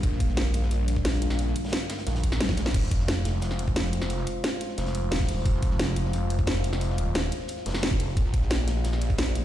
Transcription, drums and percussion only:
0.03 kick, closed hi-hat
0.12 snare
0.20 kick, closed hi-hat
0.28 snare
0.37 snare, closed hi-hat
0.54 closed hi-hat
0.62 snare
0.71 closed hi-hat
0.88 closed hi-hat
0.96 kick, snare
1.05 snare, closed hi-hat
1.14 closed hi-hat
1.22 snare, closed hi-hat
1.30 snare, closed hi-hat
1.39 closed hi-hat
1.48 snare
1.56 closed hi-hat
1.64 snare, closed hi-hat
1.68 snare, closed hi-hat
1.72 snare, closed hi-hat
1.90 snare, closed hi-hat
1.98 snare, closed hi-hat
2.07 snare, closed hi-hat
2.15 snare, closed hi-hat
2.24 kick, closed hi-hat
2.32 snare
2.40 snare, closed hi-hat, high tom
2.49 kick, snare, closed hi-hat
2.57 snare, closed hi-hat
2.65 snare, closed hi-hat
2.74 kick, closed hi-hat, crash
2.83 snare
2.91 kick, closed hi-hat
3.00 snare
3.08 snare, closed hi-hat
3.25 snare, closed hi-hat
3.34 snare
3.42 snare, closed hi-hat
3.51 snare
3.59 closed hi-hat
3.67 kick, closed hi-hat
3.76 snare, closed hi-hat
3.85 snare
3.93 closed hi-hat
4.02 snare
4.10 closed hi-hat
4.18 snare
4.27 closed hi-hat
4.44 snare, closed hi-hat
4.61 closed hi-hat
4.69 snare
4.78 snare, closed hi-hat
4.86 snare, closed hi-hat
4.95 closed hi-hat
5.11 snare, closed hi-hat
5.20 kick, snare, closed hi-hat
5.24 snare, closed hi-hat
5.28 closed hi-hat, open hi-hat
5.46 kick, closed hi-hat
5.54 snare
5.62 kick, closed hi-hat
5.71 snare
5.79 snare, closed hi-hat
5.96 closed hi-hat
6.05 snare
6.13 closed hi-hat
6.30 closed hi-hat
6.38 kick, closed hi-hat
6.47 snare, closed hi-hat
6.56 snare
6.64 closed hi-hat
6.73 snare
6.81 closed hi-hat
6.90 snare
6.98 closed hi-hat
7.15 snare, closed hi-hat
7.32 closed hi-hat
7.40 snare
7.48 closed hi-hat
7.57 snare
7.66 snare, closed hi-hat
7.69 snare, closed hi-hat
7.74 snare, closed hi-hat
7.78 snare, closed hi-hat
7.83 snare, closed hi-hat
7.91 kick, snare
8.00 closed hi-hat, open hi-hat
8.17 kick, closed hi-hat
8.25 snare
8.34 kick, closed hi-hat
8.42 snare
8.50 snare, closed hi-hat
8.67 snare, closed hi-hat
8.76 snare
8.84 snare, closed hi-hat
8.93 snare
9.01 closed hi-hat
9.10 kick, closed hi-hat
9.18 snare, closed hi-hat
9.27 snare
9.35 closed hi-hat

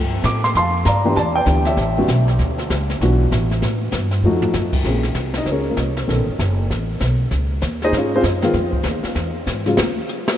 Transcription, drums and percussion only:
0.23 kick, snare, hi-hat pedal
0.44 snare
0.55 brush sweep, kick, snare
0.85 kick, snare, hi-hat pedal
1.16 brush sweep, kick, snare
1.46 kick, snare, hi-hat pedal
1.65 snare
1.77 brush sweep, kick, snare
2.08 kick, snare, hi-hat pedal
2.28 snare
2.39 brush sweep, kick, snare
2.58 snare
2.70 kick, snare, hi-hat pedal
2.90 snare
3.01 brush sweep, kick, snare
3.31 kick, snare, hi-hat pedal
3.51 snare
3.62 brush sweep, kick, snare
3.92 kick, snare, hi-hat pedal
4.11 snare
4.42 floor tom
4.53 snare, hi-hat pedal
4.73 kick, crash
4.84 brush sweep, kick, snare
5.03 snare
5.14 kick, snare, hi-hat pedal
5.34 snare
5.46 brush sweep, kick, snare
5.77 kick, snare, hi-hat pedal
5.97 snare
6.08 brush sweep, kick, snare
6.39 kick, snare, hi-hat pedal
6.70 brush sweep, kick, snare
7.00 kick, snare, hi-hat pedal
7.31 brush sweep, kick, snare
7.62 kick, snare, hi-hat pedal
7.82 snare
7.93 brush sweep, kick, snare
8.23 kick, snare, hi-hat pedal
8.42 snare
8.54 brush sweep, kick, snare
8.73 kick
8.83 snare, hi-hat pedal
9.04 snare
9.15 brush sweep, kick, snare
9.47 kick, snare, hi-hat pedal
9.66 snare
9.77 snare
10.09 hi-hat pedal
10.28 snare

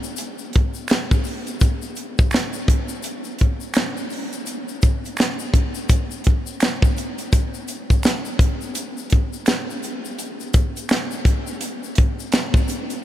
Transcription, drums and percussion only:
0.03 shaker
0.16 closed hi-hat, shaker
0.38 shaker
0.53 kick, closed hi-hat
0.74 shaker
0.88 finger snap, snare, closed hi-hat, shaker
1.11 kick, shaker
1.24 open hi-hat, shaker
1.47 closed hi-hat, shaker
1.60 kick, closed hi-hat, shaker
1.82 shaker
1.96 closed hi-hat, shaker
2.18 kick, shaker
2.31 finger snap, snare, shaker
2.35 closed hi-hat
2.53 shaker
2.68 kick, closed hi-hat
2.89 shaker
3.03 closed hi-hat, shaker
3.24 shaker
3.39 kick, closed hi-hat
3.61 shaker
3.74 finger snap, snare, closed hi-hat, shaker
3.97 shaker
4.10 open hi-hat, shaker
4.33 closed hi-hat, shaker
4.46 closed hi-hat, shaker
4.68 shaker
4.82 kick, closed hi-hat, shaker
5.05 closed hi-hat, shaker
5.17 finger snap, snare, shaker
5.21 closed hi-hat
5.39 shaker
5.54 kick, closed hi-hat
5.75 shaker
5.89 kick, closed hi-hat, shaker
6.11 shaker
6.24 kick, closed hi-hat
6.47 shaker
6.60 finger snap, snare, closed hi-hat, shaker
6.82 kick, shaker
6.97 closed hi-hat, shaker
7.18 closed hi-hat, shaker
7.33 kick, closed hi-hat, shaker
7.54 shaker
7.68 closed hi-hat, shaker
7.90 kick, closed hi-hat, shaker
8.03 finger snap, snare, closed hi-hat, shaker
8.25 shaker
8.39 kick, closed hi-hat
8.61 shaker
8.75 closed hi-hat, shaker
8.97 shaker
9.10 kick, closed hi-hat
9.33 shaker
9.46 finger snap, snare, closed hi-hat, shaker
9.70 shaker
9.83 closed hi-hat, shaker
10.05 shaker
10.19 closed hi-hat, shaker
10.40 shaker
10.53 kick, closed hi-hat, shaker
10.77 closed hi-hat, shaker
10.89 finger snap, snare, closed hi-hat, shaker
11.11 shaker
11.25 kick, closed hi-hat
11.47 shaker
11.61 closed hi-hat, shaker
11.83 shaker
11.95 kick, closed hi-hat
12.20 shaker
12.32 finger snap, snare, closed hi-hat, shaker
12.54 kick, shaker
12.68 closed hi-hat, shaker
12.90 closed hi-hat, shaker

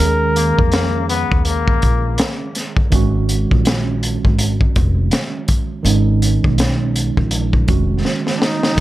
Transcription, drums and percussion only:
0.36 closed hi-hat
0.59 kick
0.72 snare, closed hi-hat
1.09 closed hi-hat
1.32 kick
1.45 closed hi-hat
1.68 kick
1.82 kick, closed hi-hat
2.18 snare, closed hi-hat
2.55 snare, closed hi-hat
2.77 kick
2.92 kick, closed hi-hat
3.29 closed hi-hat
3.51 kick
3.65 snare, closed hi-hat
4.03 closed hi-hat
4.25 kick
4.39 closed hi-hat
4.61 kick
4.76 kick, closed hi-hat
5.11 snare, closed hi-hat
5.48 kick, closed hi-hat
5.86 closed hi-hat
6.22 closed hi-hat
6.44 kick
6.58 snare, closed hi-hat
6.96 closed hi-hat
7.17 kick
7.31 closed hi-hat
7.53 kick
7.68 kick, closed hi-hat
8.05 snare
8.27 snare
8.42 snare
8.63 snare

